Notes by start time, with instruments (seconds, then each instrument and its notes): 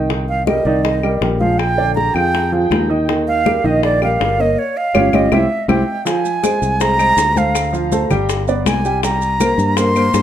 Already playing: fretless electric bass C2
0.09 grand piano D#3 D#4 D#5, high bongo, high conga
0.28 flute F5, high conga
0.47 grand piano G3 G4 A#4, flute D#5, high bongo, high conga, claves
0.65 fretless electric bass C2, grand piano D#3 D#4 D#5, flute D5, high conga
0.84 flute D#5, high bongo, high conga
1.03 grand piano G3 G4 A#4, high conga, claves
1.21 fretless electric bass A#1, grand piano G3 G4 A#4, high bongo, low bongo, high conga
1.40 grand piano F3 F4 G#4, flute F5, high conga
1.58 flute G5, high bongo, high conga, claves
1.78 grand piano D3 D4 D5, high bongo, high conga
1.95 flute A#5, high bongo, high conga
2.14 fretless electric bass F2, grand piano F3 F4 G#4, flute G5, high bongo, claves
2.34 high bongo, high conga
2.52 grand piano F3 F4 G#4, high bongo, high conga
2.71 fretless electric bass D#2, high bongo, low bongo, high conga, claves
2.89 grand piano D#3 D#4 D#5, high conga
3.08 grand piano D#3 D#4 D#5, high bongo, high conga
3.28 flute F5, high conga
3.46 grand piano G3 G4 A#4, high bongo, high conga, claves
3.64 fretless electric bass A#1, grand piano D#3 D#4 D#5, flute D#5, high conga
3.83 flute D5, high bongo, high conga
4.02 grand piano G3 G4 A#4, flute F5, high conga, claves
4.20 fretless electric bass G1, grand piano G3 G4 A#4, high bongo, low bongo, high conga
4.39 grand piano A#3 A#4 C#5, flute D#5
4.59 flute C#5
4.77 flute F5
4.94 fretless electric bass G1, grand piano C#4 F4 G4, low bongo, high conga, claves
5.13 fretless electric bass G1, grand piano C#4 F4 G4, flute D#5, low bongo, high conga, claves
5.32 fretless electric bass C2, grand piano C4 E4 G4, flute E5, low bongo, high conga, claves
5.68 fretless electric bass C2, grand piano C4 E4 G4, flute G5, low bongo, high conga, claves
6.05 grand piano F3 F4 F5, flute G#5, high bongo, high conga, maracas
6.25 high conga, maracas
6.43 grand piano G#3 G#4 C5, high bongo, high conga, claves, maracas
6.62 fretless electric bass C2, high conga, maracas
6.80 grand piano G#3 G#4 C5, flute A#5, high bongo, high conga, maracas
6.99 grand piano G#3 G#4 C5, high conga, claves, maracas
7.17 fretless electric bass D2, high bongo, low bongo, high conga, maracas
7.36 grand piano A3 A4 C5, flute F5, high conga, maracas
7.55 high bongo, high conga, claves, maracas
7.73 grand piano F3 F4 F5, high bongo, high conga, maracas
7.92 grand piano A3 A4 C5, high bongo, high conga, maracas
8.10 fretless electric bass G1, grand piano G3 G4 G5, high bongo, low conga, claves, maracas
8.29 high bongo, high conga, maracas
8.48 grand piano B3 B4 D5, high bongo, high conga, maracas
8.65 fretless electric bass C2, flute G#5, high bongo, low bongo, high conga, claves, maracas
8.85 grand piano G3 G4 G5, high conga, maracas
9.03 grand piano G3 G4 G5, flute A#5, high bongo, high conga, maracas
9.22 high conga, maracas
9.40 grand piano A#3 A#4 C5, high bongo, high conga, claves, maracas
9.58 fretless electric bass G2, high conga, maracas
9.77 grand piano A#3 A#4 C5, flute C6, high bongo, high conga, maracas
9.96 grand piano A#3 A#4 C5, high conga, claves, maracas
10.14 fretless electric bass G2, high bongo, low bongo, high conga, maracas